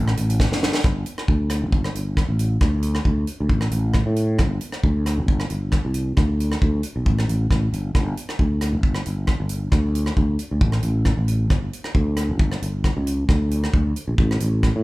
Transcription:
Already playing: fretless electric bass A1
0.08 cross-stick
0.17 fretless electric bass A1, closed hi-hat
0.30 closed hi-hat
0.40 kick, snare
0.51 fretless electric bass F#1, snare
0.63 snare
0.74 snare
0.84 fretless electric bass G1, kick, cross-stick
1.06 closed hi-hat
1.18 cross-stick
1.28 fretless electric bass D2, kick
1.50 cross-stick, closed hi-hat
1.62 fretless electric bass G1
1.72 kick
1.84 cross-stick
1.95 fretless electric bass G1, closed hi-hat
2.17 kick, cross-stick
2.29 fretless electric bass A1
2.39 closed hi-hat
2.61 fretless electric bass D2, kick, cross-stick
2.83 closed hi-hat
2.95 cross-stick
3.05 fretless electric bass D2, kick
3.27 closed hi-hat
3.40 fretless electric bass D2
3.49 fretless electric bass A1, kick
3.61 cross-stick
3.71 fretless electric bass A1, closed hi-hat
3.94 kick, cross-stick
4.06 fretless electric bass A2
4.16 closed hi-hat
4.39 fretless electric bass G1, kick, cross-stick
4.61 closed hi-hat
4.72 cross-stick
4.83 fretless electric bass D2, kick
5.06 cross-stick, closed hi-hat
5.18 fretless electric bass G1
5.28 kick
5.40 cross-stick
5.50 fretless electric bass G1, closed hi-hat
5.72 kick, cross-stick
5.85 fretless electric bass C2
5.94 closed hi-hat
6.17 fretless electric bass D2, kick, cross-stick
6.40 closed hi-hat
6.52 cross-stick
6.62 fretless electric bass D2, kick
6.83 closed hi-hat
6.96 fretless electric bass B1
7.06 fretless electric bass A1, kick
7.19 cross-stick
7.29 fretless electric bass A1, closed hi-hat
7.51 fretless electric bass A1, kick, cross-stick
7.72 fretless electric bass G1, closed hi-hat
7.95 fretless electric bass G1, kick, cross-stick
8.17 closed hi-hat
8.29 cross-stick
8.39 fretless electric bass D2, kick
8.61 cross-stick, closed hi-hat
8.73 fretless electric bass G1
8.83 kick
8.95 cross-stick
9.06 fretless electric bass G1, closed hi-hat
9.27 kick, cross-stick
9.40 fretless electric bass G1
9.49 closed hi-hat
9.72 fretless electric bass D2, kick, cross-stick
9.95 closed hi-hat
10.06 cross-stick
10.17 fretless electric bass D2, kick
10.39 closed hi-hat
10.51 fretless electric bass D2
10.61 fretless electric bass A1, kick
10.72 cross-stick
10.83 fretless electric bass A1, closed hi-hat
11.05 kick, cross-stick
11.17 fretless electric bass A1
11.28 closed hi-hat
11.50 fretless electric bass G1, kick, cross-stick
11.73 closed hi-hat
11.84 cross-stick
11.95 fretless electric bass D2, kick
12.17 cross-stick, closed hi-hat
12.29 fretless electric bass G1
12.39 kick
12.52 cross-stick
12.62 fretless electric bass G1, closed hi-hat
12.84 kick, cross-stick
12.97 fretless electric bass C#2
13.07 closed hi-hat
13.29 fretless electric bass D2, kick, cross-stick
13.51 closed hi-hat
13.64 cross-stick
13.74 fretless electric bass D2, kick
13.96 closed hi-hat
14.08 fretless electric bass A#1
14.18 fretless electric bass A1, kick
14.31 cross-stick
14.40 fretless electric bass A1, closed hi-hat
14.63 kick, cross-stick
14.76 fretless electric bass A2

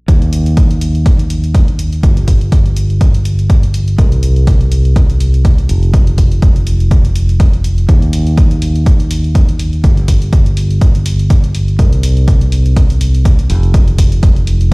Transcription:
0.08 fingered electric bass D#2, kick, closed hi-hat
0.22 closed hi-hat
0.33 closed hi-hat
0.46 closed hi-hat
0.57 kick, closed hi-hat
0.71 closed hi-hat
0.81 closed hi-hat
0.95 closed hi-hat
1.06 kick, closed hi-hat
1.19 closed hi-hat
1.30 closed hi-hat
1.44 closed hi-hat
1.55 kick, closed hi-hat
1.68 closed hi-hat
1.79 closed hi-hat
1.93 closed hi-hat
2.03 fingered electric bass G1, kick, closed hi-hat
2.17 closed hi-hat
2.28 kick, closed hi-hat
2.41 closed hi-hat
2.52 kick, closed hi-hat
2.66 closed hi-hat
2.77 closed hi-hat
2.90 closed hi-hat
3.01 kick, closed hi-hat
3.14 closed hi-hat
3.25 closed hi-hat
3.39 closed hi-hat
3.50 kick, closed hi-hat
3.63 closed hi-hat
3.74 closed hi-hat
3.88 closed hi-hat
3.98 fingered electric bass C2, kick, closed hi-hat
4.12 closed hi-hat
4.23 closed hi-hat
4.36 closed hi-hat
4.47 kick, closed hi-hat
4.61 closed hi-hat
4.72 closed hi-hat
4.85 closed hi-hat
4.96 kick, closed hi-hat
5.10 closed hi-hat
5.20 closed hi-hat
5.34 closed hi-hat
5.45 kick, closed hi-hat
5.58 closed hi-hat
5.69 fingered electric bass F1, closed hi-hat
5.83 closed hi-hat
5.94 kick, closed hi-hat
6.07 closed hi-hat
6.18 kick, closed hi-hat
6.32 closed hi-hat
6.42 kick, closed hi-hat
6.56 closed hi-hat
6.67 closed hi-hat
6.80 closed hi-hat
6.91 kick, closed hi-hat
7.05 closed hi-hat
7.16 closed hi-hat
7.29 closed hi-hat
7.40 kick, closed hi-hat
7.54 closed hi-hat
7.64 closed hi-hat
7.78 closed hi-hat
7.89 fingered electric bass D#2, kick, closed hi-hat
8.02 closed hi-hat
8.13 open hi-hat
8.27 closed hi-hat
8.37 kick, closed hi-hat
8.51 closed hi-hat
8.62 open hi-hat
8.75 closed hi-hat
8.86 kick, closed hi-hat
9.00 closed hi-hat
9.11 open hi-hat
9.24 closed hi-hat
9.35 kick, closed hi-hat
9.49 closed hi-hat
9.59 open hi-hat
9.73 closed hi-hat
9.84 fingered electric bass G1, kick, closed hi-hat
9.97 closed hi-hat
10.08 kick, open hi-hat
10.22 closed hi-hat
10.33 kick, closed hi-hat
10.46 closed hi-hat
10.57 open hi-hat
10.71 closed hi-hat
10.81 kick, closed hi-hat
10.95 closed hi-hat
11.06 open hi-hat
11.19 closed hi-hat
11.30 kick, closed hi-hat
11.44 closed hi-hat
11.55 open hi-hat
11.68 closed hi-hat
11.79 fingered electric bass C2, kick, closed hi-hat
11.93 closed hi-hat
12.03 open hi-hat
12.17 closed hi-hat
12.28 kick, closed hi-hat
12.41 closed hi-hat
12.52 open hi-hat
12.66 closed hi-hat
12.77 kick, closed hi-hat
12.90 closed hi-hat
13.01 open hi-hat
13.15 closed hi-hat
13.25 kick, closed hi-hat
13.39 closed hi-hat
13.50 fingered electric bass F1, open hi-hat
13.63 closed hi-hat
13.74 kick, closed hi-hat
13.88 closed hi-hat
13.98 kick, open hi-hat
14.12 closed hi-hat
14.23 kick, closed hi-hat
14.36 closed hi-hat
14.47 open hi-hat
14.61 closed hi-hat

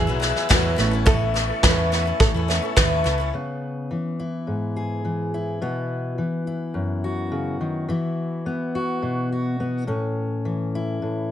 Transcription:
Already playing: upright piano E2 F#3 B3 E4 G#4 E5, five-string banjo G#4, tonewheel organ B4 F#5 G#5 E6
0.07 fingered electric bass B1, steel-string acoustic guitar F#3 G#3 B3 E4
0.20 steel-string acoustic guitar F#3 G#3 B3 E4, snare
0.36 snare
0.49 steel-string acoustic guitar E2 B2 F#3 G#3 B3 E4, fingered electric bass E2, five-string banjo B4, kick, snare
0.76 fingered electric bass A1, upright piano A1 A2 A3 C#4 E4 B4 E5, steel-string acoustic guitar E3 B3 C#4 E4, tonewheel organ E5 A5 C#6, snare
0.91 steel-string acoustic guitar B3 C#4 E4
1.06 steel-string acoustic guitar A2 E3 B3 C#4 E4, five-string banjo A4, kick, snare
1.34 steel-string acoustic guitar E3 B3 C#4 E4, snare
1.63 fingered electric bass E2, steel-string acoustic guitar A2 E3 B3 C#4 E4, five-string banjo B4, kick, snare
1.92 steel-string acoustic guitar E3 B3 C#4 E4, snare
2.05 steel-string acoustic guitar B3 C#4 E4
2.20 fingered electric bass A1, five-string banjo A4, kick, snare
2.34 fingered electric bass E2, steel-string acoustic guitar B3 C#4 E4
2.48 steel-string acoustic guitar E3 B3 C#4 E4, upright piano A3 C#4 E4 B4 C#5 E5, snare
2.62 steel-string acoustic guitar B3 C#4 E4
2.76 fingered electric bass D#2, steel-string acoustic guitar A2 E3 B3 C#4 E4, five-string banjo B4, upright piano E5, kick, snare
3.04 fingered electric bass C#2, steel-string acoustic guitar E3 B3 C#4 E4, snare
3.18 steel-string acoustic guitar B3 C#4 E4
3.34 steel-string acoustic guitar C#3 B3
3.91 steel-string acoustic guitar E3
4.20 steel-string acoustic guitar E4
4.47 steel-string acoustic guitar G#2
4.76 steel-string acoustic guitar G#4
5.05 steel-string acoustic guitar E3
5.34 steel-string acoustic guitar E4
5.62 steel-string acoustic guitar B2 B3
6.18 steel-string acoustic guitar E3
6.47 steel-string acoustic guitar E4
6.74 steel-string acoustic guitar F#2
7.04 steel-string acoustic guitar F#4
7.32 steel-string acoustic guitar C#3
7.61 steel-string acoustic guitar D#3
7.89 steel-string acoustic guitar E3 E4
8.46 steel-string acoustic guitar B3
8.75 steel-string acoustic guitar F#4
9.02 steel-string acoustic guitar B2
9.32 steel-string acoustic guitar F#4
9.60 steel-string acoustic guitar B3
9.87 steel-string acoustic guitar A2 C#4
10.45 steel-string acoustic guitar E3
10.75 steel-string acoustic guitar E4
11.02 steel-string acoustic guitar A2

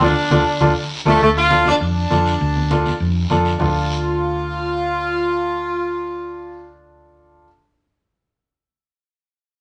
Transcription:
0.00 fingered electric bass D2, upright piano D4 F4 A4, saxophone section D4, high conga, long guiro
0.30 fingered electric bass D2, upright piano D4 F4 A4, high conga, long guiro
0.61 fingered electric bass D2, upright piano D4 F4 A4, high conga, long guiro
1.05 fingered electric bass D2, saxophone section A3, upright piano D4 F4 A4, high conga
1.21 fingered electric bass D2, saxophone section A3, high conga, long guiro
1.37 saxophone section F4
1.51 upright piano D4 F4 A4, high conga, short guiro
1.65 saxophone section D4, high conga, short guiro
1.80 fingered electric bass F2, saxophone section D4, high conga, long guiro
2.10 fingered electric bass F2, upright piano D4 F4 A4, high conga, short guiro
2.26 short guiro
2.40 fingered electric bass D2, high conga, long guiro
2.56 high conga
2.70 upright piano D4 F4 A4, high conga, short guiro
2.86 high conga, short guiro
3.00 fingered electric bass F2, high conga, long guiro
3.30 fingered electric bass F2, upright piano D4 F4 A4, high conga, short guiro
3.45 short guiro
3.58 fingered electric bass D2, upright piano D4 F4 A4, saxophone section F4, low conga, long guiro

